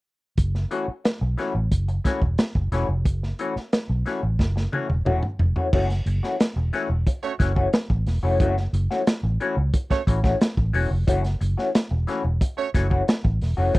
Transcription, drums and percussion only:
0.38 kick loud
0.38 closed hi-hat medium
0.55 snare soft
0.71 closed hi-hat medium
1.05 snare medium
1.05 closed hi-hat medium
1.38 snare soft
1.38 closed hi-hat medium
1.72 kick medium
1.72 closed hi-hat medium
1.88 closed hi-hat soft
2.05 kick medium
2.05 snare soft
2.05 closed hi-hat medium
2.22 kick medium
2.38 snare loud
2.38 closed hi-hat medium
2.55 kick medium
2.72 snare soft
2.72 closed hi-hat medium
3.05 kick loud
3.05 closed hi-hat medium
3.23 snare soft
3.39 closed hi-hat medium
3.56 snare soft
3.73 snare loud
3.73 closed hi-hat medium
4.06 snare soft
4.06 closed hi-hat medium
4.39 kick medium
4.39 snare soft
4.57 snare soft
4.73 high tom medium
4.90 high tom medium
5.06 mid tom medium
5.23 mid tom medium
5.39 floor tom medium
5.56 floor tom medium
5.73 kick loud
5.73 crash loud
5.90 snare soft
5.90 closed hi-hat medium
6.06 closed hi-hat medium
6.24 snare soft
6.40 snare loud
6.40 closed hi-hat loud
6.73 snare soft
6.73 closed hi-hat medium
7.07 kick medium
7.07 closed hi-hat medium
7.23 closed hi-hat soft
7.40 kick medium
7.40 snare soft
7.40 closed hi-hat medium
7.56 kick medium
7.73 snare loud
7.73 closed hi-hat medium
7.90 kick medium
8.06 snare soft
8.06 open hi-hat medium
8.40 kick loud
8.40 closed hi-hat medium
8.57 snare soft
8.74 closed hi-hat medium
8.91 snare soft
9.07 snare loud
9.07 closed hi-hat loud
9.41 closed hi-hat medium
9.73 kick medium
9.73 closed hi-hat medium
9.91 kick medium
9.91 snare soft
9.91 closed hi-hat soft
10.07 kick medium
10.07 closed hi-hat medium
10.24 kick loud
10.24 snare soft
10.41 snare loud
10.41 closed hi-hat medium
10.57 kick medium
10.74 open hi-hat medium
11.08 kick loud
11.08 closed hi-hat medium
11.24 snare soft
11.24 closed hi-hat medium
11.41 closed hi-hat medium
11.59 snare soft
11.75 snare loud
11.75 closed hi-hat medium
12.08 snare soft
12.08 closed hi-hat medium
12.41 kick medium
12.41 closed hi-hat medium
12.74 kick medium
12.74 snare soft
12.74 closed hi-hat medium
12.91 kick medium
13.08 snare loud
13.08 closed hi-hat medium
13.25 kick loud
13.41 snare soft
13.41 open hi-hat medium
13.75 kick loud
13.75 closed hi-hat medium

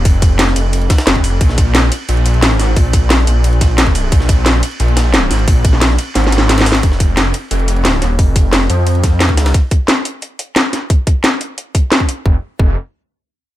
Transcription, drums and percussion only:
0.05 kick loud
0.05 closed hi-hat medium
0.05 open hi-hat medium
0.22 kick loud
0.22 closed hi-hat loud
0.22 ride medium
0.22 ride bell medium
0.39 snare loud
0.39 closed hi-hat medium
0.39 ride medium
0.48 snare soft
0.56 closed hi-hat medium
0.56 ride medium
0.56 ride bell medium
0.73 closed hi-hat medium
0.73 ride medium
0.81 ride soft
0.90 kick loud
0.90 snare loud
0.90 closed hi-hat medium
0.90 ride medium
0.90 ride bell medium
0.98 snare loud
0.98 ride medium
1.07 snare loud
1.07 closed hi-hat medium
1.07 ride medium
1.15 kick medium
1.15 ride soft
1.24 open hi-hat medium
1.24 ride medium
1.24 ride bell medium
1.41 kick loud
1.41 closed hi-hat medium
1.41 ride medium
1.49 snare soft
1.58 kick loud
1.58 closed hi-hat loud
1.58 ride medium
1.58 ride bell medium
1.75 snare loud
1.75 closed hi-hat medium
1.75 ride medium
1.92 closed hi-hat medium
1.92 ride medium
1.92 ride bell medium
2.09 closed hi-hat medium
2.09 ride medium
2.17 ride soft
2.26 closed hi-hat medium
2.26 ride medium
2.26 ride bell medium
2.34 ride soft
2.42 snare loud
2.42 closed hi-hat medium
2.42 ride medium
2.51 snare medium
2.59 snare soft
2.59 open hi-hat medium
2.59 ride medium
2.59 ride bell medium
2.76 kick loud
2.76 closed hi-hat medium
2.76 open hi-hat medium
2.93 kick loud
2.93 closed hi-hat loud
2.93 ride medium
2.93 ride bell medium
3.10 snare loud
3.10 closed hi-hat medium
3.10 ride medium
3.19 snare soft
3.27 closed hi-hat medium
3.27 ride bell medium
3.44 closed hi-hat medium
3.44 ride medium
3.53 ride soft
3.61 kick loud
3.61 snare medium
3.61 closed hi-hat medium
3.61 ride medium
3.61 ride bell medium
3.78 snare loud
3.78 closed hi-hat medium
3.78 ride medium
3.87 kick medium
3.87 ride soft
3.95 open hi-hat medium
3.95 ride medium
3.95 ride bell medium
4.12 kick loud
4.12 closed hi-hat medium
4.12 ride medium
4.20 snare soft
4.29 kick loud
4.29 closed hi-hat loud
4.29 ride medium
4.29 ride bell medium
4.46 snare loud
4.46 closed hi-hat medium
4.46 ride medium
4.63 closed hi-hat medium
4.63 ride medium
4.63 ride bell medium
4.71 ride soft
4.80 closed hi-hat medium
4.80 ride medium
4.88 ride soft
4.97 snare loud
4.97 closed hi-hat medium
4.97 ride medium
4.97 ride bell medium
5.14 snare loud
5.14 closed hi-hat medium
5.14 ride medium
5.31 snare soft
5.31 open hi-hat medium
5.31 ride medium
5.31 ride bell medium
5.39 ride soft
5.48 kick loud
5.48 closed hi-hat medium
5.48 open hi-hat medium
5.65 kick loud
5.65 closed hi-hat loud
5.65 ride medium
5.65 ride bell medium
5.73 snare soft
5.81 snare loud
5.81 closed hi-hat medium
5.81 ride medium
5.90 snare soft
5.98 closed hi-hat medium
5.98 ride medium
5.98 ride bell medium
6.15 snare medium
6.15 closed hi-hat medium
6.15 ride medium
6.24 snare medium
6.24 ride soft
6.32 snare medium
6.32 closed hi-hat medium
6.32 ride medium
6.32 ride bell medium
6.38 snare medium
6.49 snare loud
6.49 snare medium
6.49 closed hi-hat medium
6.49 ride medium
6.58 snare loud
6.58 ride medium
6.61 snare loud
6.66 snare loud
6.66 open hi-hat medium
6.66 ride medium
6.66 ride bell medium
6.72 snare loud
6.75 snare loud
6.75 ride medium
6.83 kick loud
6.83 closed hi-hat medium
6.83 ride medium
6.92 snare soft
7.00 kick loud
7.00 closed hi-hat loud
7.00 ride medium
7.17 snare loud
7.17 closed hi-hat medium
7.17 ride medium
7.34 closed hi-hat loud
7.34 ride medium
7.51 closed hi-hat medium
7.51 ride medium
7.59 ride soft
7.68 closed hi-hat medium
7.68 ride medium
7.76 ride soft
7.85 snare loud
7.85 closed hi-hat medium
7.85 ride medium
7.93 snare medium
8.02 snare soft
8.02 closed hi-hat loud
8.02 ride medium
8.19 kick loud
8.19 closed hi-hat medium
8.19 open hi-hat medium
8.36 kick loud
8.36 closed hi-hat loud
8.36 ride medium
8.53 snare loud
8.53 closed hi-hat medium
8.53 ride medium
8.61 snare soft
8.70 closed hi-hat loud
8.70 ride medium
8.87 closed hi-hat medium
8.87 ride medium
8.95 ride soft
9.04 kick loud
9.04 snare medium
9.04 closed hi-hat loud
9.04 ride medium
9.20 snare loud
9.20 closed hi-hat medium
9.20 ride medium
9.29 kick medium
9.29 ride soft
9.37 snare loud
9.37 closed hi-hat loud
9.37 ride medium
9.46 snare loud
9.46 ride medium
9.54 kick loud
9.54 closed hi-hat medium
9.71 kick loud
9.71 closed hi-hat loud
9.88 snare loud
9.88 closed hi-hat medium
10.05 closed hi-hat medium
10.22 closed hi-hat medium
10.39 closed hi-hat medium
10.56 snare loud
10.56 closed hi-hat medium
10.73 snare soft
10.73 closed hi-hat loud
10.90 kick loud
10.90 closed hi-hat medium
11.07 kick loud
11.07 closed hi-hat loud
11.24 snare loud
11.24 closed hi-hat medium
11.41 closed hi-hat medium
11.58 closed hi-hat medium
11.75 kick loud
11.75 closed hi-hat medium
11.92 snare loud
11.92 closed hi-hat medium
12.00 kick medium
12.09 closed hi-hat medium
12.26 kick loud
12.59 kick loud

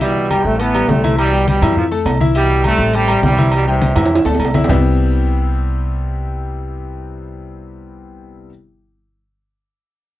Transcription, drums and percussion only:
0.01 high conga soft
0.01 low agogo medium
0.16 high conga soft
0.31 high conga medium
0.31 low timbale medium
0.31 low agogo loud
0.45 high conga soft
0.60 high conga soft
0.60 low agogo medium
0.75 high conga soft
0.75 low agogo loud
0.89 high conga medium
0.89 low timbale medium
1.04 high conga medium
1.04 low agogo medium
1.18 low agogo loud
1.33 high conga soft
1.48 high conga loud
1.48 low timbale medium
1.48 low agogo medium
1.62 high conga soft
1.62 low conga medium
1.62 low agogo loud
1.77 high conga soft
1.77 low conga medium
1.92 high conga soft
2.06 high conga soft
2.06 low timbale medium
2.06 low agogo loud
2.21 high conga medium
2.35 high conga soft
2.35 low agogo medium
2.50 high conga soft
2.64 high conga medium
2.64 low timbale medium
2.64 low agogo loud
2.80 high conga soft
2.93 high conga soft
2.93 low agogo medium
3.08 high conga soft
3.08 low agogo loud
3.23 high conga medium
3.23 low timbale medium
3.37 high conga medium
3.37 low agogo medium
3.52 low agogo loud
3.67 high conga soft
3.81 high conga loud
3.81 low timbale medium
3.81 low agogo medium
3.96 high conga soft
3.96 low conga medium
3.96 high timbale loud
3.96 low agogo loud
4.06 high timbale medium
4.11 high conga soft
4.15 high timbale loud
4.25 high conga soft
4.25 low timbale loud
4.35 low timbale medium
4.40 high conga soft
4.40 low agogo loud
4.45 low timbale loud
4.54 high conga medium
4.54 low timbale medium
4.64 low timbale loud
4.69 low conga loud
4.69 low timbale loud

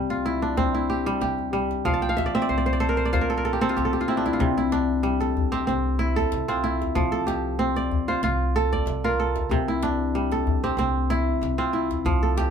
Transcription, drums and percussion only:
0.10 djembe slap soft
0.57 djembe slap medium
0.57 djembe tone medium
0.57 djembe bass medium
1.21 djembe slap medium
1.38 djembe tone soft
1.71 djembe slap soft
1.86 djembe slap soft
1.86 djembe bass medium
2.03 djembe slap soft
2.18 djembe slap medium
2.18 djembe tone medium
2.67 djembe slap soft
3.14 djembe slap medium
3.14 djembe tone medium
3.14 djembe bass medium
3.46 djembe slap soft
3.78 djembe slap medium
3.94 djembe tone soft
4.09 djembe slap soft
4.26 djembe slap medium
4.40 djembe bass medium
4.72 djembe slap medium
5.21 djembe slap medium
5.37 djembe slap soft
5.37 djembe bass medium
5.54 djembe tone medium
5.69 djembe slap medium
6.17 djembe bass soft
6.32 djembe slap medium
6.82 djembe slap medium
6.82 djembe tone medium
6.96 djembe bass medium
7.28 djembe slap medium
7.77 djembe slap soft
7.91 djembe slap soft
7.91 djembe bass medium
8.09 djembe tone medium
8.23 djembe slap medium
8.73 djembe bass medium
8.87 djembe slap medium
9.36 djembe slap medium
9.36 djembe tone medium
9.51 djembe bass medium
9.83 djembe slap medium
10.32 djembe slap medium
10.47 djembe slap soft
10.47 djembe bass medium
10.64 djembe tone medium
10.78 djembe slap medium
11.43 djembe slap medium
11.91 djembe slap medium
11.91 djembe tone medium
12.06 djembe slap soft
12.06 djembe bass medium
12.23 djembe slap soft
12.38 djembe slap medium

